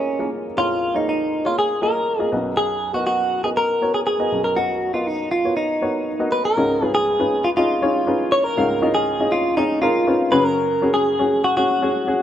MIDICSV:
0, 0, Header, 1, 3, 480
1, 0, Start_track
1, 0, Tempo, 500125
1, 547, Time_signature, 4, 2, 24, 8
1, 11732, End_track
2, 0, Start_track
2, 0, Title_t, "Clean electric guitar"
2, 0, Program_c, 0, 27
2, 0, Note_on_c, 0, 61, 59
2, 276, Note_off_c, 0, 61, 0
2, 557, Note_on_c, 0, 65, 81
2, 920, Note_on_c, 0, 63, 57
2, 923, Note_off_c, 0, 65, 0
2, 1035, Note_off_c, 0, 63, 0
2, 1046, Note_on_c, 0, 63, 68
2, 1405, Note_on_c, 0, 65, 68
2, 1407, Note_off_c, 0, 63, 0
2, 1518, Note_off_c, 0, 65, 0
2, 1522, Note_on_c, 0, 68, 92
2, 1753, Note_off_c, 0, 68, 0
2, 1757, Note_on_c, 0, 70, 71
2, 2199, Note_off_c, 0, 70, 0
2, 2469, Note_on_c, 0, 68, 87
2, 2820, Note_off_c, 0, 68, 0
2, 2824, Note_on_c, 0, 66, 69
2, 2931, Note_off_c, 0, 66, 0
2, 2943, Note_on_c, 0, 66, 76
2, 3280, Note_off_c, 0, 66, 0
2, 3302, Note_on_c, 0, 68, 70
2, 3350, Note_off_c, 0, 68, 0
2, 3427, Note_on_c, 0, 70, 84
2, 3781, Note_off_c, 0, 70, 0
2, 3785, Note_on_c, 0, 68, 75
2, 3833, Note_off_c, 0, 68, 0
2, 3903, Note_on_c, 0, 68, 81
2, 4260, Note_off_c, 0, 68, 0
2, 4264, Note_on_c, 0, 70, 73
2, 4381, Note_on_c, 0, 66, 89
2, 4390, Note_off_c, 0, 70, 0
2, 4737, Note_off_c, 0, 66, 0
2, 4741, Note_on_c, 0, 65, 64
2, 4866, Note_off_c, 0, 65, 0
2, 4866, Note_on_c, 0, 63, 69
2, 5097, Note_off_c, 0, 63, 0
2, 5100, Note_on_c, 0, 65, 67
2, 5339, Note_off_c, 0, 65, 0
2, 5343, Note_on_c, 0, 63, 65
2, 6027, Note_off_c, 0, 63, 0
2, 6066, Note_on_c, 0, 71, 81
2, 6188, Note_off_c, 0, 71, 0
2, 6192, Note_on_c, 0, 70, 74
2, 6663, Note_off_c, 0, 70, 0
2, 6666, Note_on_c, 0, 68, 93
2, 7145, Note_on_c, 0, 65, 88
2, 7162, Note_off_c, 0, 68, 0
2, 7193, Note_off_c, 0, 65, 0
2, 7265, Note_on_c, 0, 65, 96
2, 7986, Note_on_c, 0, 73, 97
2, 8008, Note_off_c, 0, 65, 0
2, 8101, Note_off_c, 0, 73, 0
2, 8101, Note_on_c, 0, 70, 104
2, 8582, Note_off_c, 0, 70, 0
2, 8585, Note_on_c, 0, 68, 80
2, 8945, Note_on_c, 0, 65, 82
2, 8957, Note_off_c, 0, 68, 0
2, 9182, Note_off_c, 0, 65, 0
2, 9186, Note_on_c, 0, 63, 107
2, 9418, Note_off_c, 0, 63, 0
2, 9422, Note_on_c, 0, 65, 91
2, 9903, Note_on_c, 0, 71, 99
2, 9919, Note_off_c, 0, 65, 0
2, 10020, Note_off_c, 0, 71, 0
2, 10020, Note_on_c, 0, 70, 96
2, 10494, Note_off_c, 0, 70, 0
2, 10498, Note_on_c, 0, 68, 88
2, 10979, Note_off_c, 0, 68, 0
2, 10983, Note_on_c, 0, 66, 89
2, 11093, Note_off_c, 0, 66, 0
2, 11105, Note_on_c, 0, 66, 98
2, 11732, Note_off_c, 0, 66, 0
2, 11732, End_track
3, 0, Start_track
3, 0, Title_t, "Upright piano"
3, 0, Program_c, 1, 0
3, 0, Control_c, 1, 64, 127
3, 0, Note_on_c, 1, 34, 50
3, 0, Note_on_c, 1, 41, 52
3, 0, Note_on_c, 1, 58, 64
3, 0, Note_on_c, 1, 65, 52
3, 0, Note_on_c, 1, 68, 54
3, 0, Note_on_c, 1, 70, 57
3, 0, Note_on_c, 1, 73, 61
3, 0, Note_on_c, 1, 75, 68
3, 184, Note_off_c, 1, 58, 0
3, 184, Note_on_c, 1, 58, 64
3, 185, Note_off_c, 1, 65, 0
3, 185, Note_on_c, 1, 65, 53
3, 191, Note_off_c, 1, 68, 0
3, 191, Note_off_c, 1, 70, 0
3, 191, Note_on_c, 1, 68, 56
3, 191, Note_on_c, 1, 70, 71
3, 438, Note_off_c, 1, 58, 0
3, 439, Note_off_c, 1, 65, 0
3, 441, Note_off_c, 1, 68, 0
3, 441, Note_off_c, 1, 70, 0
3, 509, Note_off_c, 1, 34, 0
3, 509, Note_off_c, 1, 41, 0
3, 543, Note_on_c, 1, 58, 55
3, 546, Note_on_c, 1, 65, 54
3, 547, Note_on_c, 1, 34, 52
3, 547, Note_on_c, 1, 41, 52
3, 547, Note_on_c, 1, 68, 53
3, 551, Note_off_c, 1, 73, 0
3, 551, Note_on_c, 1, 73, 68
3, 797, Note_off_c, 1, 58, 0
3, 799, Note_off_c, 1, 65, 0
3, 800, Note_off_c, 1, 68, 0
3, 801, Note_off_c, 1, 73, 0
3, 906, Note_on_c, 1, 58, 54
3, 907, Note_on_c, 1, 65, 54
3, 911, Note_on_c, 1, 68, 52
3, 912, Note_on_c, 1, 73, 56
3, 1243, Note_off_c, 1, 58, 0
3, 1243, Note_off_c, 1, 65, 0
3, 1245, Note_off_c, 1, 68, 0
3, 1246, Note_off_c, 1, 73, 0
3, 1387, Note_on_c, 1, 58, 53
3, 1390, Note_on_c, 1, 65, 45
3, 1391, Note_on_c, 1, 68, 50
3, 1395, Note_on_c, 1, 73, 65
3, 1640, Note_off_c, 1, 58, 0
3, 1641, Note_off_c, 1, 65, 0
3, 1641, Note_off_c, 1, 68, 0
3, 1643, Note_off_c, 1, 73, 0
3, 1746, Note_on_c, 1, 58, 68
3, 1747, Note_on_c, 1, 65, 56
3, 1751, Note_on_c, 1, 68, 60
3, 1753, Note_off_c, 1, 75, 0
3, 1753, Note_on_c, 1, 75, 70
3, 1999, Note_off_c, 1, 58, 0
3, 1999, Note_off_c, 1, 65, 0
3, 2001, Note_off_c, 1, 68, 0
3, 2002, Note_off_c, 1, 75, 0
3, 2102, Note_on_c, 1, 58, 64
3, 2106, Note_on_c, 1, 65, 63
3, 2110, Note_on_c, 1, 68, 63
3, 2111, Note_on_c, 1, 75, 70
3, 2189, Note_off_c, 1, 34, 0
3, 2189, Note_off_c, 1, 41, 0
3, 2217, Note_off_c, 1, 75, 0
3, 2225, Note_off_c, 1, 58, 0
3, 2225, Note_on_c, 1, 59, 64
3, 2227, Note_off_c, 1, 65, 0
3, 2227, Note_on_c, 1, 35, 61
3, 2228, Note_on_c, 1, 42, 56
3, 2228, Note_on_c, 1, 66, 65
3, 2229, Note_off_c, 1, 68, 0
3, 2230, Note_on_c, 1, 70, 60
3, 2231, Note_on_c, 1, 75, 73
3, 2240, Control_c, 1, 64, 0
3, 2388, Control_c, 1, 64, 127
3, 2706, Note_off_c, 1, 59, 0
3, 2707, Note_off_c, 1, 66, 0
3, 2709, Note_off_c, 1, 70, 0
3, 2709, Note_off_c, 1, 75, 0
3, 2824, Note_on_c, 1, 59, 60
3, 2827, Note_on_c, 1, 66, 50
3, 2828, Note_on_c, 1, 70, 51
3, 2833, Note_on_c, 1, 75, 71
3, 3162, Note_off_c, 1, 59, 0
3, 3163, Note_off_c, 1, 66, 0
3, 3164, Note_off_c, 1, 70, 0
3, 3167, Note_off_c, 1, 75, 0
3, 3303, Note_on_c, 1, 59, 49
3, 3306, Note_on_c, 1, 66, 54
3, 3307, Note_on_c, 1, 70, 48
3, 3309, Note_on_c, 1, 75, 58
3, 3557, Note_off_c, 1, 59, 0
3, 3559, Note_off_c, 1, 66, 0
3, 3560, Note_off_c, 1, 70, 0
3, 3561, Note_off_c, 1, 75, 0
3, 3662, Note_on_c, 1, 59, 68
3, 3664, Note_on_c, 1, 66, 58
3, 3666, Note_on_c, 1, 70, 62
3, 3670, Note_on_c, 1, 73, 70
3, 3917, Note_off_c, 1, 59, 0
3, 3918, Note_off_c, 1, 66, 0
3, 3919, Note_off_c, 1, 70, 0
3, 3921, Note_off_c, 1, 73, 0
3, 4019, Note_on_c, 1, 59, 63
3, 4023, Note_on_c, 1, 66, 53
3, 4027, Note_on_c, 1, 70, 57
3, 4029, Note_on_c, 1, 75, 72
3, 4109, Note_off_c, 1, 35, 0
3, 4110, Note_off_c, 1, 42, 0
3, 4145, Note_on_c, 1, 35, 53
3, 4146, Note_on_c, 1, 42, 57
3, 4276, Note_off_c, 1, 59, 0
3, 4278, Note_off_c, 1, 66, 0
3, 4279, Note_off_c, 1, 70, 0
3, 4281, Note_off_c, 1, 75, 0
3, 4379, Note_on_c, 1, 59, 51
3, 4384, Note_on_c, 1, 66, 53
3, 4385, Note_on_c, 1, 70, 51
3, 4389, Note_on_c, 1, 75, 57
3, 4636, Note_off_c, 1, 59, 0
3, 4638, Note_off_c, 1, 66, 0
3, 4639, Note_off_c, 1, 70, 0
3, 4641, Note_off_c, 1, 75, 0
3, 4740, Note_on_c, 1, 59, 59
3, 4742, Note_on_c, 1, 66, 54
3, 4746, Note_on_c, 1, 70, 50
3, 4747, Note_on_c, 1, 75, 60
3, 5080, Note_off_c, 1, 59, 0
3, 5081, Note_off_c, 1, 66, 0
3, 5083, Note_off_c, 1, 70, 0
3, 5084, Note_off_c, 1, 75, 0
3, 5225, Note_on_c, 1, 59, 58
3, 5226, Note_on_c, 1, 66, 52
3, 5229, Note_on_c, 1, 70, 45
3, 5233, Note_on_c, 1, 73, 66
3, 5479, Note_off_c, 1, 59, 0
3, 5479, Note_off_c, 1, 66, 0
3, 5481, Note_off_c, 1, 70, 0
3, 5482, Note_off_c, 1, 73, 0
3, 5583, Note_on_c, 1, 59, 68
3, 5585, Note_on_c, 1, 66, 58
3, 5588, Note_on_c, 1, 70, 60
3, 5589, Note_on_c, 1, 73, 75
3, 5838, Note_off_c, 1, 59, 0
3, 5839, Note_off_c, 1, 66, 0
3, 5840, Note_off_c, 1, 70, 0
3, 5841, Note_off_c, 1, 73, 0
3, 5943, Note_on_c, 1, 59, 70
3, 5947, Note_on_c, 1, 66, 70
3, 5948, Note_on_c, 1, 70, 66
3, 5951, Note_on_c, 1, 75, 77
3, 6028, Note_off_c, 1, 35, 0
3, 6028, Note_off_c, 1, 42, 0
3, 6198, Note_off_c, 1, 59, 0
3, 6199, Note_off_c, 1, 66, 0
3, 6200, Note_off_c, 1, 70, 0
3, 6202, Note_off_c, 1, 75, 0
3, 6305, Note_on_c, 1, 61, 72
3, 6306, Note_on_c, 1, 63, 58
3, 6309, Note_on_c, 1, 44, 55
3, 6310, Note_on_c, 1, 37, 60
3, 6310, Note_on_c, 1, 65, 63
3, 6311, Note_on_c, 1, 68, 60
3, 6313, Note_on_c, 1, 75, 76
3, 6321, Control_c, 1, 64, 0
3, 6475, Note_off_c, 1, 61, 0
3, 6475, Note_off_c, 1, 63, 0
3, 6477, Note_off_c, 1, 65, 0
3, 6477, Note_off_c, 1, 68, 0
3, 6478, Note_off_c, 1, 75, 0
3, 6482, Control_c, 1, 64, 127
3, 6542, Note_on_c, 1, 61, 69
3, 6542, Note_on_c, 1, 63, 66
3, 6547, Note_on_c, 1, 65, 62
3, 6548, Note_on_c, 1, 68, 62
3, 6550, Note_on_c, 1, 71, 73
3, 6797, Note_off_c, 1, 61, 0
3, 6797, Note_off_c, 1, 63, 0
3, 6799, Note_off_c, 1, 65, 0
3, 6800, Note_off_c, 1, 68, 0
3, 6801, Note_off_c, 1, 71, 0
3, 6903, Note_on_c, 1, 61, 69
3, 6906, Note_on_c, 1, 63, 62
3, 6907, Note_on_c, 1, 65, 61
3, 6910, Note_on_c, 1, 68, 58
3, 6911, Note_on_c, 1, 71, 82
3, 7157, Note_off_c, 1, 61, 0
3, 7159, Note_off_c, 1, 63, 0
3, 7160, Note_off_c, 1, 65, 0
3, 7161, Note_off_c, 1, 68, 0
3, 7162, Note_off_c, 1, 71, 0
3, 7265, Note_on_c, 1, 61, 66
3, 7266, Note_on_c, 1, 63, 59
3, 7269, Note_on_c, 1, 65, 67
3, 7271, Note_on_c, 1, 68, 65
3, 7273, Note_on_c, 1, 75, 83
3, 7435, Note_off_c, 1, 61, 0
3, 7435, Note_off_c, 1, 63, 0
3, 7436, Note_off_c, 1, 65, 0
3, 7437, Note_off_c, 1, 68, 0
3, 7439, Note_off_c, 1, 75, 0
3, 7505, Note_on_c, 1, 61, 71
3, 7505, Note_on_c, 1, 63, 68
3, 7507, Note_on_c, 1, 65, 64
3, 7510, Note_on_c, 1, 68, 71
3, 7511, Note_on_c, 1, 73, 86
3, 7674, Note_off_c, 1, 61, 0
3, 7675, Note_off_c, 1, 63, 0
3, 7676, Note_off_c, 1, 65, 0
3, 7677, Note_off_c, 1, 68, 0
3, 7677, Note_off_c, 1, 73, 0
3, 7743, Note_on_c, 1, 61, 72
3, 7746, Note_on_c, 1, 63, 71
3, 7748, Note_on_c, 1, 65, 66
3, 7752, Note_on_c, 1, 68, 61
3, 7754, Note_on_c, 1, 71, 79
3, 8082, Note_off_c, 1, 61, 0
3, 8083, Note_off_c, 1, 63, 0
3, 8084, Note_off_c, 1, 65, 0
3, 8086, Note_off_c, 1, 68, 0
3, 8087, Note_off_c, 1, 71, 0
3, 8190, Note_off_c, 1, 37, 0
3, 8190, Note_off_c, 1, 44, 0
3, 8224, Note_on_c, 1, 61, 73
3, 8226, Note_on_c, 1, 63, 57
3, 8227, Note_on_c, 1, 65, 61
3, 8228, Note_on_c, 1, 37, 61
3, 8228, Note_on_c, 1, 44, 65
3, 8230, Note_on_c, 1, 68, 60
3, 8232, Note_on_c, 1, 77, 83
3, 8394, Note_off_c, 1, 61, 0
3, 8395, Note_off_c, 1, 63, 0
3, 8396, Note_off_c, 1, 65, 0
3, 8397, Note_off_c, 1, 68, 0
3, 8398, Note_off_c, 1, 77, 0
3, 8463, Note_on_c, 1, 61, 72
3, 8463, Note_on_c, 1, 63, 61
3, 8467, Note_on_c, 1, 65, 72
3, 8469, Note_on_c, 1, 68, 66
3, 8470, Note_on_c, 1, 75, 84
3, 8718, Note_off_c, 1, 61, 0
3, 8718, Note_off_c, 1, 63, 0
3, 8720, Note_off_c, 1, 65, 0
3, 8721, Note_off_c, 1, 68, 0
3, 8721, Note_off_c, 1, 75, 0
3, 8829, Note_on_c, 1, 61, 71
3, 8830, Note_on_c, 1, 63, 69
3, 8833, Note_on_c, 1, 65, 61
3, 8836, Note_on_c, 1, 68, 65
3, 8837, Note_on_c, 1, 75, 77
3, 9080, Note_off_c, 1, 61, 0
3, 9081, Note_off_c, 1, 63, 0
3, 9083, Note_off_c, 1, 65, 0
3, 9084, Note_off_c, 1, 68, 0
3, 9085, Note_off_c, 1, 75, 0
3, 9190, Note_on_c, 1, 61, 76
3, 9190, Note_on_c, 1, 63, 59
3, 9194, Note_on_c, 1, 65, 65
3, 9194, Note_on_c, 1, 68, 69
3, 9198, Note_on_c, 1, 75, 84
3, 9357, Note_off_c, 1, 61, 0
3, 9357, Note_off_c, 1, 63, 0
3, 9359, Note_off_c, 1, 65, 0
3, 9359, Note_off_c, 1, 68, 0
3, 9361, Note_off_c, 1, 75, 0
3, 9427, Note_on_c, 1, 61, 70
3, 9428, Note_on_c, 1, 63, 73
3, 9430, Note_on_c, 1, 65, 66
3, 9432, Note_on_c, 1, 68, 70
3, 9435, Note_on_c, 1, 70, 90
3, 9596, Note_off_c, 1, 61, 0
3, 9596, Note_off_c, 1, 63, 0
3, 9597, Note_off_c, 1, 65, 0
3, 9598, Note_off_c, 1, 68, 0
3, 9600, Note_off_c, 1, 70, 0
3, 9666, Note_on_c, 1, 61, 78
3, 9667, Note_on_c, 1, 63, 69
3, 9669, Note_on_c, 1, 65, 69
3, 9673, Note_on_c, 1, 68, 64
3, 9674, Note_on_c, 1, 71, 75
3, 9869, Note_off_c, 1, 37, 0
3, 9869, Note_off_c, 1, 44, 0
3, 9887, Note_off_c, 1, 61, 0
3, 9895, Note_off_c, 1, 68, 0
3, 9901, Note_on_c, 1, 61, 87
3, 9905, Note_on_c, 1, 49, 70
3, 9906, Note_on_c, 1, 66, 78
3, 9907, Note_on_c, 1, 42, 67
3, 9908, Note_off_c, 1, 63, 0
3, 9909, Note_off_c, 1, 65, 0
3, 9909, Note_on_c, 1, 68, 86
3, 9911, Note_off_c, 1, 71, 0
3, 9920, Control_c, 1, 64, 0
3, 10107, Control_c, 1, 64, 127
3, 10288, Note_off_c, 1, 61, 0
3, 10291, Note_off_c, 1, 66, 0
3, 10292, Note_off_c, 1, 68, 0
3, 10385, Note_on_c, 1, 61, 83
3, 10389, Note_on_c, 1, 66, 69
3, 10395, Note_on_c, 1, 68, 92
3, 10638, Note_off_c, 1, 61, 0
3, 10640, Note_off_c, 1, 66, 0
3, 10644, Note_off_c, 1, 68, 0
3, 10742, Note_on_c, 1, 61, 78
3, 10747, Note_on_c, 1, 66, 67
3, 10751, Note_on_c, 1, 68, 74
3, 10997, Note_off_c, 1, 61, 0
3, 11000, Note_off_c, 1, 66, 0
3, 11002, Note_off_c, 1, 68, 0
3, 11105, Note_on_c, 1, 61, 75
3, 11109, Note_on_c, 1, 66, 69
3, 11113, Note_on_c, 1, 68, 82
3, 11274, Note_off_c, 1, 61, 0
3, 11276, Note_off_c, 1, 66, 0
3, 11279, Note_off_c, 1, 68, 0
3, 11346, Note_on_c, 1, 61, 82
3, 11350, Note_on_c, 1, 66, 72
3, 11355, Note_on_c, 1, 68, 82
3, 11515, Note_off_c, 1, 61, 0
3, 11517, Note_off_c, 1, 66, 0
3, 11520, Note_off_c, 1, 68, 0
3, 11587, Note_on_c, 1, 61, 75
3, 11592, Note_on_c, 1, 66, 72
3, 11595, Note_on_c, 1, 68, 84
3, 11732, Note_off_c, 1, 42, 0
3, 11732, Note_off_c, 1, 49, 0
3, 11732, Note_off_c, 1, 61, 0
3, 11732, Note_off_c, 1, 66, 0
3, 11732, Note_off_c, 1, 68, 0
3, 11732, End_track
0, 0, End_of_file